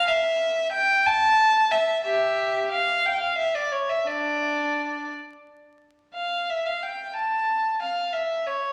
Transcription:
0.08 E5
0.72 G5
1.06 A5
1.71 E5
2.04 G4 E5
2.71 F5
3.06 G5
3.20 F5
3.38 E5
3.55 D5
3.72 C#5
3.89 E5
4.07 D4 D5
6.15 F5
6.50 E5
6.66 F5
6.83 G5
7.16 A5
7.82 F5
8.13 E5
8.47 C#5

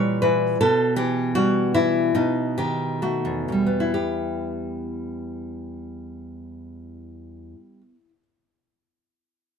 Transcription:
Already playing: A#2 E3 G3 C#5
0.22 E3 B4
0.61 B2 A4
0.96 E3 G4
1.35 G3 F#4
1.74 E3 E4
2.15 B2 D#4
2.58 D#3 G4
3.02 A3 F#4
3.25 E2
3.48 D#3 G3
3.66 B3
3.80 E4
3.94 G4

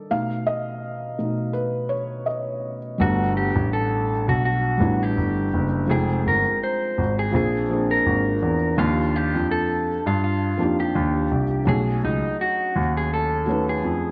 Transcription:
Already playing: A4 A#4
0.10 B2 A3 D#4 F5
0.47 D#5
1.19 B2 A3 D#4
1.53 B4
1.89 C#5
2.26 D#5
2.98 G1 G3 A3 B3 D4 F#4
3.03 F#5
3.37 G4
3.56 A1
3.73 A4
4.28 B1 F#4
4.45 F#4
4.78 A1 G3 A3 B3 D4
4.82 E4
5.03 G4
5.17 G1
5.53 F#1
5.87 F1 F3 G#3 C4 D#4
5.91 G#4 G5
6.26 G1 A#4
6.63 C5
6.98 G#1
7.19 G#4
7.31 A#1 F3 A#3 C4 D4
7.36 G#4
7.68 F3 A#3 C4 D4
7.73 G#4
7.91 A#4
8.06 G#1
8.42 E2
8.76 D#2 F3 A#3 D4 D#4 F4
8.80 F4
8.87 G4
9.16 G4
9.34 F2
9.51 A4
10.06 G2 F4
10.24 F4
10.58 F2 F3 A#3 D4 D#4
10.62 G4
10.80 G4
10.95 D#2
11.31 C2
11.65 B1 F#3 A3 C#4 D#4 G#4
11.70 G#4
12.03 C#2 D#4
12.41 F#4
12.76 D#2
12.97 G#4
13.14 A4
13.46 A3 C#4 D#4 F#4
13.51 B4
13.69 G#4
13.84 F2

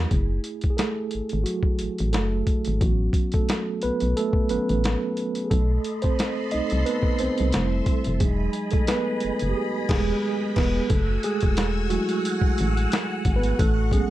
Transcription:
Already playing: F#3 G#3 D#4 G#4
0.10 F#1 A3 E4 G#4, kick, closed hi-hat
0.44 closed hi-hat
0.61 kick, closed hi-hat
0.70 G#4
0.77 A3 A4, snare, closed hi-hat
1.11 closed hi-hat
1.15 G#1
1.29 G#1, closed hi-hat
1.44 F#3 F#4, closed hi-hat
1.63 kick
1.79 A1, closed hi-hat
1.98 A1, closed hi-hat
2.13 F#1 A3 A4, snare, closed hi-hat
2.47 kick, closed hi-hat
2.65 G#1, closed hi-hat
2.81 A1 F#3 B3 C#4 F#4, kick, closed hi-hat
3.13 kick, closed hi-hat
3.32 A3 A4, kick, closed hi-hat
3.49 snare, closed hi-hat
3.82 B1 B3 B4, closed hi-hat
4.00 B1, closed hi-hat
4.17 A3 A4, closed hi-hat
4.33 kick
4.49 A1 F#3 B3 C#4 B4, closed hi-hat
4.69 A1, closed hi-hat
4.84 snare, closed hi-hat
5.17 closed hi-hat
5.35 closed hi-hat
5.44 G#4
5.50 B1 A3 A4 D#5 B5 C6, kick, closed hi-hat
5.84 closed hi-hat
6.02 C4 C5, kick, closed hi-hat
6.19 snare, closed hi-hat
6.51 C2 A3 C4 D#4 D#5, closed hi-hat
6.70 C2, closed hi-hat
6.86 B3 B4, closed hi-hat
7.03 kick
7.19 C2 C4 C5, closed hi-hat
7.38 C2, closed hi-hat
7.52 F1 G3 A3 E4 E5, snare, closed hi-hat
7.86 kick, closed hi-hat
8.04 F1, closed hi-hat
8.20 E1 F#3 G#3 D#4 G#4 D#5 B5, kick, closed hi-hat
8.53 closed hi-hat
8.71 A3 A4, kick, closed hi-hat
8.87 B3 B4, snare, closed hi-hat
9.20 closed hi-hat
9.25 F#1
9.39 F#1, closed hi-hat
9.49 G4
9.89 E1 G#3 G#4, kick, snare, crash
10.56 E1 B3 B4, kick, snare, crash
10.89 F#1 A3 F#4 A4 F#5 G#5 E6, kick, closed hi-hat
11.23 G#3 G#4, closed hi-hat
11.41 E1, kick, closed hi-hat
11.57 snare, closed hi-hat
11.90 F#3 G#3 A3 E4 F#4, closed hi-hat
12.09 closed hi-hat
12.25 closed hi-hat
12.42 kick
12.58 A1, closed hi-hat
12.77 closed hi-hat
12.92 snare, closed hi-hat
13.25 G#1, kick, closed hi-hat
13.36 B3 B4
13.43 closed hi-hat
13.59 A1 A3 F#4 A4 C#6, kick, closed hi-hat
13.91 F#3 G#3 B3 C#4 G#4, kick, closed hi-hat

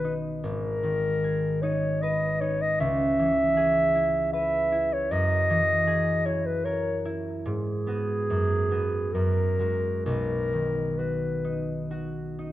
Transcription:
Already playing: B1 D#3 F#4 B4
0.04 D#4
0.44 G#1 A#4
0.83 D#3
1.24 G#4
1.62 D#4 C#5
2.02 B4 D#5
2.41 D#4 C#5
2.62 D#5
2.80 C#2 E5
3.19 E3
3.57 G#4
3.95 E4
4.33 B4 E5
4.72 E4
4.93 C#5
5.11 F#2 D#5
5.50 E3
5.87 G#4
6.25 E4 C#5
6.46 B4
6.65 A#4 C#5
7.05 E4
7.45 G#2 G#4
7.87 B3 F#4
8.30 F#2
8.71 B3 F#4
9.14 F#2 A#4
9.59 G#3 F#4
10.06 B1 A#4
10.53 D#3
10.98 F#4 B4
11.45 D#4
11.91 F#4
12.39 D#4

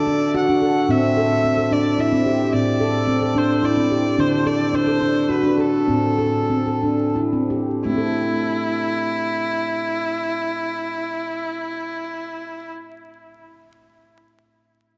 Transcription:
Already playing: D3 D5
0.07 D4
0.35 F#4 F#5
0.49 D4
0.62 A4
0.89 A2 C4 E5
1.17 A4
1.44 C4
1.57 A4
1.71 D4 D5
1.98 E4 E5
2.13 C4
2.26 G4
2.53 A2 C4 D5
2.80 A4
3.07 C4
3.22 A4
3.35 D4 C5
3.63 E4 D5
3.77 C4
3.91 G4
4.18 D3 D4 C5
4.46 A4 D5
4.73 D4 C5
4.87 A4
5.01 D4
5.29 F#4 B4
5.44 D4
5.58 A4
5.88 A2 C4
6.19 A4
6.50 C4
6.66 A4
6.83 D4
7.16 E4
7.33 C4
7.50 G4
7.85 A3 E4
7.90 C4
7.94 E4 A4

